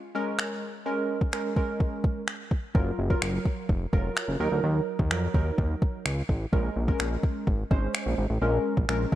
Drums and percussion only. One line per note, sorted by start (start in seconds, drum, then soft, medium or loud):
0.39 finger snap loud
1.21 kick medium
1.33 finger snap loud
1.56 kick medium
1.80 kick medium
2.04 kick loud
2.28 finger snap loud
2.51 kick medium
2.75 kick loud
3.10 kick medium
3.22 finger snap loud
3.45 kick medium
3.69 kick medium
3.93 kick medium
4.17 finger snap loud
4.99 kick medium
5.11 finger snap loud
5.34 kick medium
5.58 kick medium
5.82 kick medium
6.06 finger snap loud
6.29 kick medium
6.53 kick loud
6.88 kick medium
7.00 finger snap loud
7.23 kick medium
7.47 kick medium
7.71 kick loud
7.95 finger snap loud
8.77 kick medium
8.89 finger snap loud